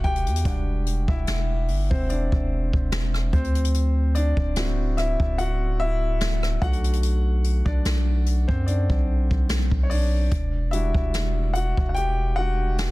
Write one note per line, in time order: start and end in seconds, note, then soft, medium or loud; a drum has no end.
0.00 0.29 E1 loud
0.00 0.46 G3 medium
0.00 0.46 D4 soft
0.00 3.35 F#4 medium
0.00 0.06 G4 medium
0.00 0.47 F#5 loud
0.00 0.04 G5 loud
0.04 1.06 G4 medium
0.04 1.12 G5 loud
0.04 kick loud
0.04 closed hi-hat soft
0.16 closed hi-hat medium
0.27 0.45 E2 loud
0.27 closed hi-hat medium
0.36 closed hi-hat medium
0.45 1.06 E1 loud
0.45 1.65 G3 medium
0.45 1.65 D4 medium
0.45 1.65 F#5 medium
0.45 kick loud
0.45 closed hi-hat medium
0.86 closed hi-hat medium
1.08 1.27 E1 loud
1.08 1.88 E4 medium
1.08 1.93 E5 medium
1.08 kick loud
1.27 1.71 E1 loud
1.27 snare loud
1.27 closed hi-hat medium
1.68 1.90 G1 loud
1.68 open hi-hat medium
1.90 2.30 E1 loud
1.90 2.09 C4 medium
1.90 2.08 C5 medium
1.90 kick medium
2.10 2.89 D4 medium
2.10 2.88 D5 medium
2.10 closed hi-hat medium
2.32 2.72 E1 loud
2.32 kick medium
2.73 3.31 E1 loud
2.73 kick medium
2.92 snare loud
2.92 closed hi-hat medium
3.14 cross-stick medium
3.33 4.34 D2 loud
3.33 4.12 C4 medium
3.33 4.11 C5 medium
3.33 kick loud
3.33 closed hi-hat soft
3.44 closed hi-hat medium
3.55 closed hi-hat medium
3.65 closed hi-hat medium
3.74 closed hi-hat medium
4.15 4.94 D4 medium
4.15 5.00 D5 loud
4.15 closed hi-hat medium
4.37 5.16 D1 loud
4.37 kick medium
4.56 6.58 C4 medium
4.56 4.98 E4 medium
4.56 5.39 F#4 medium
4.56 snare loud
4.56 closed hi-hat medium
4.97 5.37 E4 medium
4.97 5.40 E5 loud
4.97 cross-stick medium
4.97 closed hi-hat medium
5.20 6.58 D1 loud
5.20 kick medium
5.38 5.78 F#4 medium
5.38 5.81 F#5 loud
5.38 closed hi-hat medium
5.80 6.59 E4 medium
5.80 6.58 E5 loud
6.21 snare loud
6.21 closed hi-hat medium
6.43 cross-stick medium
6.62 7.62 B1 loud
6.62 7.81 A3 medium
6.62 7.66 D4 medium
6.62 7.82 F#4 medium
6.62 7.62 F#5 loud
6.62 kick loud
6.62 closed hi-hat soft
6.73 closed hi-hat medium
6.84 closed hi-hat medium
6.93 closed hi-hat medium
7.03 closed hi-hat medium
7.44 closed hi-hat medium
7.65 7.84 B1 loud
7.65 8.45 D4 medium
7.65 8.51 D5 medium
7.65 kick medium
7.85 8.46 B1 loud
7.85 snare loud
7.85 closed hi-hat medium
8.26 closed hi-hat medium
8.48 8.88 F#2 loud
8.48 8.67 C4 medium
8.48 8.68 C5 medium
8.48 kick medium
8.66 9.46 D4 medium
8.66 9.45 D5 medium
8.66 closed hi-hat medium
8.90 9.29 B1 loud
8.90 kick medium
9.31 9.70 B1 loud
9.31 kick medium
9.49 snare loud
9.49 closed hi-hat medium
9.71 10.29 B1 loud
9.71 kick medium
9.83 9.90 C#5 medium
9.90 10.69 D4 medium
9.90 10.75 D5 loud
9.90 open hi-hat medium
10.32 10.93 E1 loud
10.32 kick loud
10.32 closed hi-hat medium
10.71 11.92 G3 medium
10.71 11.92 D4 medium
10.71 11.52 E4 medium
10.71 11.55 F#4 medium
10.71 11.50 E5 loud
10.71 closed hi-hat medium
10.95 11.74 E1 loud
10.95 kick loud
11.14 snare loud
11.14 closed hi-hat medium
11.54 11.64 F#4 medium
11.54 11.61 F#5 loud
11.54 closed hi-hat medium
11.77 12.91 E1 loud
11.77 kick medium
11.89 11.96 F#5 medium
11.95 12.35 G4 medium
11.95 12.38 G5 loud
11.95 closed hi-hat medium
12.36 12.75 G3 medium
12.36 12.75 D4 soft
12.36 12.91 F#4 medium
12.36 12.91 F#5 loud
12.78 snare loud
12.78 closed hi-hat medium